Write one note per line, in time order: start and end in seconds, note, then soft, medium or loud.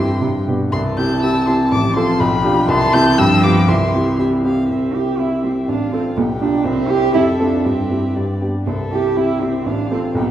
0.00 0.22 G2 medium
0.00 0.20 E3 medium
0.00 0.20 C4 medium
0.00 0.20 E4 medium
0.00 0.20 G4 medium
0.00 0.45 G5 medium
0.00 0.21 C6 medium
0.21 0.47 G2 medium
0.21 0.29 C3 medium
0.46 0.71 B2 medium
0.46 0.70 B3 medium
0.46 0.70 D4 soft
0.46 0.70 G4 medium
0.72 0.97 C2 medium
0.72 1.73 E3 medium
0.72 2.22 A5 loud
0.72 0.80 C6 loud
0.98 1.20 C4 medium
0.98 1.20 E4 medium
0.98 1.21 G4 medium
0.98 1.22 G6 loud
1.23 1.45 C4 medium
1.23 1.45 E4 medium
1.23 1.45 G4 medium
1.23 1.46 E6 medium
1.47 1.69 C4 medium
1.47 1.69 E4 medium
1.47 1.70 G4 medium
1.47 1.55 C6 loud
1.71 1.95 A1 medium
1.71 2.68 F3 medium
1.71 1.96 D6 loud
1.96 2.18 C4 medium
1.96 2.18 F4 medium
1.96 2.18 A4 medium
1.96 2.21 C6 loud
2.20 2.44 B1 medium
2.20 2.70 G5 medium
2.20 2.68 B5 loud
2.44 2.66 D4 medium
2.44 2.66 F4 medium
2.44 2.67 G4 medium
2.68 2.92 C2 loud
2.68 3.19 E3 loud
2.68 3.18 A5 loud
2.68 2.95 C6 loud
2.93 3.16 C4 medium
2.93 3.16 E4 medium
2.93 3.16 G4 medium
2.93 3.20 G6 loud
3.18 3.43 G2 loud
3.18 3.70 F3 loud
3.18 3.69 G5 loud
3.18 3.45 E6 loud
3.43 3.66 B3 medium
3.43 3.66 F4 medium
3.43 3.67 G4 medium
3.43 3.70 D6 loud
3.68 3.93 C2 medium
3.68 4.50 E3 medium
3.68 4.14 E5 medium
3.68 4.19 C6 loud
3.94 4.17 C4 medium
3.94 4.17 E4 medium
3.94 4.17 G4 medium
4.19 4.42 C4 medium
4.19 4.43 E4 medium
4.19 4.43 G4 medium
4.19 4.27 E5 medium
4.45 4.68 C4 medium
4.45 4.68 E4 medium
4.45 4.68 G4 medium
4.45 4.70 F5 medium
4.70 4.94 C2 soft
4.70 4.96 C4 medium
4.70 5.71 E5 soft
4.94 5.17 C4 soft
4.94 5.17 E4 soft
4.94 5.20 G4 medium
4.94 5.17 G4 soft
5.19 5.41 C4 soft
5.19 5.43 E4 medium
5.19 5.42 E4 soft
5.19 5.70 G4 medium
5.19 5.42 G4 soft
5.44 5.52 C4 medium
5.44 5.66 C4 soft
5.44 5.66 E4 soft
5.44 5.66 G4 soft
5.68 5.92 A1 soft
5.68 5.92 D4 medium
5.68 6.18 F4 medium
5.68 6.19 F5 medium
5.92 6.00 C4 medium
5.92 6.14 C4 soft
5.92 6.14 F4 soft
5.92 6.15 A4 medium
6.16 6.40 B1 medium
6.16 6.24 B3 medium
6.16 6.65 G4 medium
6.16 6.67 G5 medium
6.40 6.66 D4 medium
6.40 6.63 D4 soft
6.40 6.63 F4 medium
6.40 6.64 G4 medium
6.64 6.89 C2 medium
6.64 6.91 C4 loud
6.64 7.14 C5 medium
6.64 7.64 E5 medium
6.89 7.12 C4 medium
6.89 7.12 E4 medium
6.89 7.13 G4 loud
6.89 7.13 G4 medium
7.14 7.39 F2 medium
7.14 7.22 E4 loud
7.14 7.66 A4 medium
7.39 7.62 C4 medium
7.39 7.67 D4 medium
7.39 7.63 F4 soft
7.39 7.63 A4 medium
7.65 7.89 G2 medium
7.65 8.16 C4 medium
7.65 8.41 G4 medium
7.65 8.16 E5 medium
7.91 8.13 C4 soft
7.91 8.14 E4 soft
7.91 8.14 G4 soft
8.15 8.40 G2 soft
8.15 8.45 D5 soft
8.42 8.64 B3 soft
8.42 8.64 D4 soft
8.42 8.64 G4 soft
8.66 8.91 C2 medium
8.66 8.74 C4 medium
8.66 9.19 A4 medium
8.66 9.68 E5 medium
8.91 9.14 C4 soft
8.91 9.15 E4 soft
8.91 9.18 G4 medium
8.91 9.15 G4 soft
9.16 9.39 C4 soft
9.16 9.43 E4 medium
9.16 9.39 E4 soft
9.16 9.67 G4 medium
9.16 9.40 G4 soft
9.41 9.68 C4 medium
9.41 9.64 C4 soft
9.41 9.64 E4 soft
9.41 9.64 G4 soft
9.66 9.90 A1 medium
9.66 9.90 D4 medium
9.66 10.15 F4 medium
9.66 10.15 F5 medium
9.90 9.98 C4 medium
9.90 10.13 C4 soft
9.90 10.13 F4 soft
9.90 10.13 A4 medium
10.15 10.31 B1 medium
10.15 10.31 B3 medium
10.15 10.31 G4 medium
10.15 10.24 G5 medium